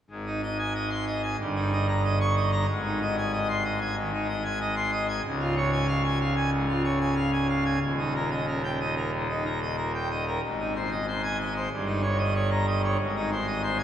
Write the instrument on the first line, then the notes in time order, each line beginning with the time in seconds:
pipe organ
0.10 G#1 G#2
0.27 D#4
0.43 D#5
0.59 G#5
0.75 D#5
0.90 C6
1.07 D#5
1.23 G#5
1.39 G1 G2
1.56 D#4
1.72 D#5
1.89 A#5
2.04 D#5
2.20 C#6
2.36 D#5
2.52 A#5
2.69 G#1 G#2
2.85 D#4
3.01 D#5
3.17 G#5
3.33 D#5
3.49 C6
3.65 D#5
3.81 G#5
3.97 D#3
4.13 D#4
4.29 D#5
4.44 G#5
4.60 D#5
4.76 C6
4.92 D#5
5.08 G#5
5.24 C#1 C#2
5.41 F4
5.56 C#5
5.72 G#5
5.88 F5
6.04 G#5
6.20 F5
6.36 G#5
6.52 G#2
6.68 F4
6.84 C#5
7.00 G#5
7.16 F5
7.32 G#5
7.49 F5
7.65 G#5
7.81 D#1 D#2
7.99 D#4
8.15 A#4
8.31 D#5
8.47 A#4
8.64 G5
8.80 D#5
8.97 A#4
9.13 A#2
9.29 D#4
9.45 A#4
9.61 D#5
9.78 A#4
9.95 G5
10.10 D#5
10.27 A#4
10.43 G#1 G#2
10.60 D#4
10.76 C5
10.91 D#5
11.07 C5
11.23 G#5
11.39 D#5
11.55 C5
11.71 G1 G2
11.87 D#4
12.03 C#5
12.18 D#5
12.35 C#5
12.51 A#5
12.67 D#5
12.84 C#5
13.00 G#1 G#2
13.16 D#4
13.32 C5
13.47 D#5
13.63 C5
13.79 G#5